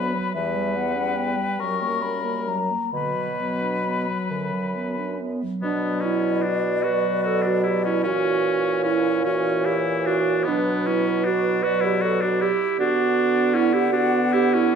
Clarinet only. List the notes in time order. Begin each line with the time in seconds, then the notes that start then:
Already playing: B3
0.14 F#3
0.35 E3
0.56 G3
0.76 B3
0.95 C#4
1.16 B3
1.37 G3
1.59 F#3
1.81 A#3
2.03 C#4
2.25 A#3
2.47 F#3
2.71 A#3
2.93 D3
3.16 F#3
3.39 B3
3.62 D4
3.85 B3
4.07 F#3
4.30 D3
4.53 F#3
4.75 B3
4.97 D4
5.20 B3
5.43 F#3
5.64 D4
6.04 E4
6.46 F#4
6.85 B4
7.26 A4
7.46 F#4
7.65 G4
7.86 E4
8.06 F#4
8.85 E4
9.26 F#4
9.66 G4
10.06 F#4
10.48 D4
10.87 E4
11.26 F#4
11.63 B4
11.85 G4
12.02 A4
12.23 F#4
12.42 G4
12.80 F#4
13.55 E4
13.74 G4
13.92 F#4
14.33 G4
14.55 E4